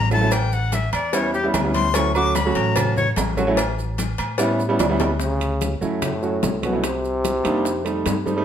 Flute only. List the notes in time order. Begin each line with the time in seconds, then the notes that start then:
Already playing: A#5
0.12 A5
0.33 G5
0.53 F#5
0.74 E5
0.94 D5
1.14 C#5
1.33 G4
1.74 C6
1.95 C#6
2.15 D6
2.35 B5
2.55 A#5
2.76 A5
2.97 C#5